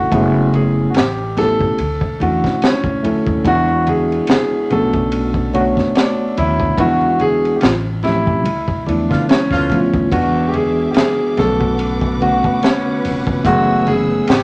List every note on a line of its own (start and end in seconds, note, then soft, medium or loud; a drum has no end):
0.00 0.13 D3 medium
0.00 0.12 A3 medium
0.00 0.14 C#4 medium
0.00 0.14 D4 medium
0.00 0.14 E4 medium
0.00 0.13 F#4 medium
0.00 0.57 F#4 loud
0.00 0.14 A4 medium
0.12 0.86 F#1 loud
0.12 0.95 A3 loud
0.12 0.95 B3 medium
0.12 0.96 C#4 medium
0.12 0.96 E4 medium
0.12 0.96 G#4 loud
0.12 kick loud
0.12 ride medium
0.12 muted conga soft
0.53 0.91 G#4 medium
0.53 ride soft
0.53 high conga medium
0.90 0.96 F#4 medium
0.94 1.70 A1 medium
0.94 1.35 G4 medium
0.94 snare loud
0.94 ride medium
0.94 muted conga soft
0.94 high conga medium
1.18 muted conga soft
1.37 1.78 A3 medium
1.37 1.78 B3 medium
1.37 1.79 C#4 medium
1.37 1.79 E4 medium
1.37 1.79 G4 medium
1.37 2.23 A4 loud
1.37 snare soft
1.37 ride medium
1.37 low conga medium
1.59 kick medium
1.59 high conga medium
1.78 2.16 D2 medium
1.78 ride medium
1.78 muted conga soft
2.01 kick medium
2.20 2.41 E2 loud
2.20 2.88 A3 medium
2.20 2.88 C#4 medium
2.20 2.89 D4 medium
2.20 2.89 E4 medium
2.20 2.64 F#4 medium
2.20 2.89 F#4 medium
2.20 ride medium
2.20 high conga medium
2.44 2.60 D3 loud
2.44 kick medium
2.44 snare soft
2.62 3.48 C#4 medium
2.62 muted upright bass stroke soft
2.62 snare loud
2.62 ride medium
2.84 3.01 D2 loud
2.84 kick medium
2.84 muted conga soft
3.03 3.38 D3 medium
3.03 3.37 A3 medium
3.03 3.38 C#4 medium
3.03 3.38 E4 medium
3.03 3.38 A4 medium
3.03 ride medium
3.03 high conga medium
3.03 low conga medium
3.27 3.43 D#2 medium
3.27 kick loud
3.45 4.19 E2 loud
3.45 4.46 G#3 loud
3.45 4.46 B3 medium
3.45 4.46 D4 medium
3.45 4.47 E4 medium
3.45 4.47 F#4 loud
3.45 3.89 F#4 loud
3.45 kick loud
3.45 ride medium
3.45 muted conga soft
3.68 muted conga soft
3.87 4.29 G#4 medium
3.87 ride medium
3.87 high conga medium
4.12 ride soft
4.27 4.72 G#4 medium
4.27 snare loud
4.27 ride medium
4.27 muted conga soft
4.27 high conga medium
4.51 muted conga soft
4.70 5.73 B1 loud
4.70 5.38 A3 medium
4.70 5.39 B3 medium
4.70 5.39 C#4 medium
4.70 5.39 D4 medium
4.70 5.40 F#4 medium
4.70 5.57 A4 loud
4.70 ride soft
4.70 low conga medium
4.93 kick medium
4.93 ride soft
4.93 high conga medium
5.12 ride medium
5.12 muted conga soft
5.34 kick medium
5.53 6.54 A3 medium
5.53 6.54 B3 medium
5.53 6.55 D4 medium
5.53 5.64 F#4 medium
5.53 6.55 F#4 medium
5.53 6.54 C#5 medium
5.53 ride medium
5.53 high conga medium
5.77 kick medium
5.77 snare soft
5.95 6.38 D4 loud
5.95 snare loud
5.95 ride medium
6.37 6.74 D#2 loud
6.37 6.80 E4 loud
6.37 ride medium
6.37 high conga medium
6.37 low conga medium
6.60 kick loud
6.78 7.52 E2 loud
6.78 7.61 G#3 medium
6.78 7.62 B3 medium
6.78 7.62 D4 medium
6.78 7.63 E4 medium
6.78 7.22 F#4 loud
6.78 7.63 F#4 loud
6.78 kick loud
6.78 ride medium
6.78 low conga medium
7.01 muted conga soft
7.20 7.53 G#4 loud
7.20 ride soft
7.20 high conga medium
7.45 ride soft
7.56 7.62 G4 medium
7.61 8.46 A1 loud
7.61 7.72 F4 medium
7.61 snare loud
7.61 ride medium
7.61 muted conga soft
7.61 high conga medium
8.03 8.45 F3 medium
8.03 8.45 A3 medium
8.03 8.46 C4 medium
8.03 8.46 C#4 medium
8.03 8.83 E4 loud
8.03 8.46 G4 medium
8.03 snare soft
8.03 ride soft
8.03 low conga medium
8.26 kick medium
8.26 high conga medium
8.45 8.83 D2 loud
8.45 ride medium
8.68 kick medium
8.68 muted conga soft
8.86 9.08 E2 medium
8.86 9.55 F3 medium
8.86 9.55 A3 medium
8.86 9.55 B3 medium
8.86 9.29 D4 medium
8.86 9.55 D4 medium
8.86 9.56 E4 medium
8.86 ride medium
8.86 high conga medium
9.10 9.25 D3 medium
9.10 9.27 D3 loud
9.10 9.25 B3 medium
9.10 9.25 F4 medium
9.10 kick loud
9.10 snare soft
9.29 10.08 C#4 loud
9.29 muted upright bass stroke soft
9.29 snare loud
9.29 ride medium
9.51 9.68 D2 medium
9.51 9.79 D3 medium
9.51 9.79 B3 medium
9.51 9.79 F4 medium
9.51 kick medium
9.51 muted conga soft
9.51 high conga soft
9.70 10.05 D3 medium
9.70 10.04 F3 medium
9.70 10.04 A3 medium
9.70 10.05 B3 medium
9.70 10.05 F4 medium
9.70 kick medium
9.70 ride medium
9.70 high conga medium
9.70 low conga medium
9.94 10.10 D#2 medium
9.94 kick loud
10.11 10.86 E2 loud
10.11 11.12 E3 loud
10.11 11.13 G#3 medium
10.11 11.13 B3 medium
10.11 11.13 D4 medium
10.11 10.48 F#4 loud
10.11 11.13 F#4 loud
10.11 11.35 G#4 medium
10.11 11.35 E5 medium
10.11 13.41 D6 medium
10.11 kick loud
10.11 ride medium
10.11 muted conga soft
10.48 10.54 G4 medium
10.53 10.91 G#4 medium
10.53 ride soft
10.53 high conga medium
10.91 10.96 G4 medium
10.91 ride medium
10.95 11.39 G#4 loud
10.95 snare loud
10.95 high conga medium
11.19 muted conga soft
11.35 12.40 B1 loud
11.35 12.05 D3 medium
11.35 12.05 A3 medium
11.35 12.05 B3 medium
11.35 12.06 C#4 medium
11.35 12.06 F#4 medium
11.35 14.25 B4 medium
11.35 14.25 F#5 medium
11.35 snare soft
11.35 ride soft
11.35 low conga medium
11.39 12.17 A4 loud
11.60 kick medium
11.60 high conga medium
11.79 ride medium
11.79 muted conga soft
12.01 kick loud
12.20 13.21 D3 medium
12.20 13.21 A3 medium
12.20 13.22 B3 medium
12.20 13.22 C#4 medium
12.20 12.64 F#4 medium
12.20 13.22 F#4 medium
12.20 ride soft
12.20 high conga medium
12.44 kick loud
12.63 13.48 C#4 medium
12.63 snare loud
12.63 ride medium
13.05 13.45 F1 medium
13.05 open hi-hat medium
13.05 ride medium
13.05 high conga medium
13.05 low conga medium
13.27 kick loud
13.44 14.19 F#1 loud
13.44 14.28 E3 loud
13.44 14.28 A3 medium
13.44 14.28 B3 medium
13.44 14.29 C#4 medium
13.44 13.88 F#4 loud
13.44 14.29 G#4 loud
13.44 14.28 G#5 medium
13.44 14.28 E6 medium
13.44 kick loud
13.44 hi-hat pedal medium
13.44 ride medium
13.44 muted conga soft
13.87 14.30 G#4 loud
13.87 ride soft
13.87 high conga medium
14.27 14.43 A1 loud
14.27 14.43 G4 loud
14.27 14.43 A4 medium
14.27 14.43 G5 medium
14.27 14.43 C#6 medium
14.27 snare loud
14.27 ride medium
14.27 high conga medium